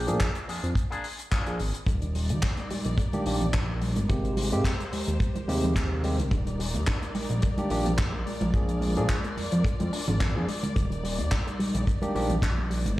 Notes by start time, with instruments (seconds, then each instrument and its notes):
Already playing: clean electric guitar A#3 D4 G4
0.07 analog synth bass A#2, tine electric piano F3 A#3 D4 G#4, closed hi-hat
0.20 kick, clap, closed hi-hat
0.35 closed hi-hat
0.48 analog synth bass F2, clean electric guitar A#3 D4 G#4, open hi-hat
0.63 analog synth bass F2, closed hi-hat
0.75 kick, closed hi-hat
0.90 clean electric guitar A#3 D4 G#4, closed hi-hat
1.04 open hi-hat
1.18 muted clean electric guitar stroke, closed hi-hat
1.31 clean electric guitar A#3 D4 G#4, kick, clap, closed hi-hat
1.46 tine electric piano F3 A#3 D4 G#4, closed hi-hat
1.59 analog synth bass G#1, open hi-hat
1.74 closed hi-hat
1.86 analog synth bass D#1, synth arpeggio sound D3, string section G3 D#4 A#4 D5, kick, closed hi-hat
2.02 synth arpeggio sound D#3, closed hi-hat
2.15 synth arpeggio sound G3, open hi-hat
2.29 analog synth bass D#2, synth arpeggio sound A#3, closed hi-hat
2.43 synth arpeggio sound D4, kick, clap, closed hi-hat
2.57 synth arpeggio sound A#3, closed hi-hat
2.70 analog synth bass A#1, synth arpeggio sound G3, open hi-hat, high conga
2.85 analog synth bass A#1, synth arpeggio sound D#3, closed hi-hat
2.98 synth arpeggio sound D3, kick, closed hi-hat
3.13 synth arpeggio sound D#3, tine electric piano D#3 A#3 D4 G4, closed hi-hat, high conga
3.26 analog synth bass A#1, tine electric piano D#3 A#3 D4 G4, synth arpeggio sound G3, open hi-hat
3.41 synth arpeggio sound A#3, closed hi-hat, low conga
3.53 synth arpeggio sound D4, kick, clap, closed hi-hat
3.69 synth arpeggio sound A#3
3.81 synth arpeggio sound G3, open hi-hat
3.96 analog synth bass G1, synth arpeggio sound D#3, closed hi-hat, high conga
4.09 analog synth bass G#1, synth arpeggio sound C3, tine electric piano C3 G#3 A#3 G4, string section G#3 G4 C5, kick, closed hi-hat
4.24 synth arpeggio sound D#3, closed hi-hat
4.37 synth arpeggio sound G3, open hi-hat, high conga
4.52 analog synth bass G#2, tine electric piano C3 G#3 A#3 G4, synth arpeggio sound G#3, closed hi-hat
4.64 synth arpeggio sound A#3, kick, clap, closed hi-hat
4.80 synth arpeggio sound G#3, closed hi-hat
4.92 analog synth bass D#2, synth arpeggio sound G3, open hi-hat, high conga
5.07 analog synth bass D#2, synth arpeggio sound D#3, closed hi-hat
5.20 synth arpeggio sound C3, kick, closed hi-hat
5.35 analog synth bass D#2, synth arpeggio sound D#3, closed hi-hat, high conga
5.48 analog synth bass D#2, tine electric piano C3 G#3 A#3 G4, synth arpeggio sound G3, open hi-hat
5.63 synth arpeggio sound G#3, closed hi-hat, low conga
5.76 synth arpeggio sound A#3, kick, clap, closed hi-hat
5.91 synth arpeggio sound G#3
6.03 tine electric piano C3 G#3 A#3 G4, synth arpeggio sound G3, open hi-hat
6.18 analog synth bass C2, synth arpeggio sound D#3, closed hi-hat, high conga
6.31 analog synth bass D#1, synth arpeggio sound D3, string section G3 D#4 D5, kick, closed hi-hat
6.47 synth arpeggio sound D#3, closed hi-hat
6.59 synth arpeggio sound G3, open hi-hat
6.74 analog synth bass D#2, synth arpeggio sound A#3, closed hi-hat
6.87 synth arpeggio sound D4, kick, clap, closed hi-hat
7.02 synth arpeggio sound A#3, closed hi-hat
7.15 analog synth bass A#1, synth arpeggio sound G3, open hi-hat, high conga
7.30 analog synth bass A#1, synth arpeggio sound D#3, closed hi-hat
7.42 synth arpeggio sound D3, kick, closed hi-hat
7.58 tine electric piano D#3 A#3 D4 G4, synth arpeggio sound D#3, closed hi-hat, high conga
7.70 analog synth bass A#1, tine electric piano D#3 A#3 D4 G4, synth arpeggio sound G3, open hi-hat
7.85 synth arpeggio sound A#3, closed hi-hat, low conga
7.98 synth arpeggio sound D4, kick, clap, closed hi-hat
8.13 synth arpeggio sound A#3
8.25 analog synth bass A#1, string section G#3 F4, synth arpeggio sound G#3, open hi-hat
8.41 analog synth bass A#1, synth arpeggio sound F3, closed hi-hat, high conga
8.54 analog synth bass A#1, synth arpeggio sound D3, tine electric piano F3 A#3 D4 G#4, kick, closed hi-hat
8.69 synth arpeggio sound F3, closed hi-hat
8.81 synth arpeggio sound G#3, open hi-hat, high conga
8.96 analog synth bass A#2, tine electric piano F3 A#3 D4 G#4, synth arpeggio sound A#3, closed hi-hat
9.09 synth arpeggio sound D4, kick, clap, closed hi-hat
9.24 synth arpeggio sound A#3, closed hi-hat
9.37 analog synth bass F2, synth arpeggio sound G#3, open hi-hat, high conga
9.52 analog synth bass F2, synth arpeggio sound F3, closed hi-hat
9.64 synth arpeggio sound D3, kick, closed hi-hat
9.80 analog synth bass F2, synth arpeggio sound F3, closed hi-hat, high conga
9.93 synth arpeggio sound D4, open hi-hat
10.08 analog synth bass G#1, synth arpeggio sound D3, closed hi-hat, low conga
10.20 synth arpeggio sound D3, kick, clap, closed hi-hat
10.35 analog synth bass F2, tine electric piano F3 A#3 D4 G#4, synth arpeggio sound F3
10.48 synth arpeggio sound G#3, open hi-hat
10.63 synth arpeggio sound D3, closed hi-hat, high conga
10.76 analog synth bass D#1, synth arpeggio sound D3, string section G3 D#4, kick, closed hi-hat
10.90 synth arpeggio sound D#3, closed hi-hat
11.03 synth arpeggio sound G3, open hi-hat
11.18 analog synth bass D#2, synth arpeggio sound A#3, closed hi-hat
11.31 synth arpeggio sound D4, kick, clap, closed hi-hat
11.47 synth arpeggio sound A#3, closed hi-hat
11.59 analog synth bass A#1, synth arpeggio sound G3, open hi-hat, high conga
11.74 analog synth bass A#1, synth arpeggio sound D#3, closed hi-hat
11.87 synth arpeggio sound D3, kick, closed hi-hat
12.02 tine electric piano D#3 A#3 D4 G4, synth arpeggio sound D#3, closed hi-hat, high conga
12.15 analog synth bass A#1, tine electric piano D#3 A#3 D4 G4, synth arpeggio sound G3, open hi-hat
12.30 synth arpeggio sound A#3, closed hi-hat, low conga
12.42 synth arpeggio sound D4, kick, clap, closed hi-hat
12.58 synth arpeggio sound A#3
12.70 synth arpeggio sound G3, open hi-hat
12.85 analog synth bass G1, synth arpeggio sound D#3, closed hi-hat, high conga